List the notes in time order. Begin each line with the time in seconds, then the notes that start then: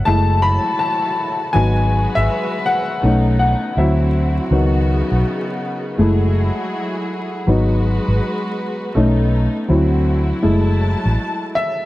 0.05 F#1 F#3 G#3 A3 E4 F#4 A5
0.42 B5
0.79 A5
1.53 G#1 F#3 G#3 B3 D#4 F#4 B4 G#5
2.15 G#1 E5
2.66 F#5
3.03 B1 A3 B3 C#4 D#4
3.39 F#5
3.76 D2 D3 F#3 C4 E4 F#4 E5
4.50 C#2 C#3 D#3 F#3 B3
5.12 B1
5.98 F#1 F#3 G#3 A3 E4 F#4 G#4
7.47 G#1 F#3 G#3 B3 D#4 F#4 B4
8.08 G#1
8.95 B1 A3 B3 C#4 D#4
9.68 D2 D3 F#3 C4 E4 F#4
10.42 F#1 F#3 G#3 A3 E4 A5
11.05 A1
11.55 E5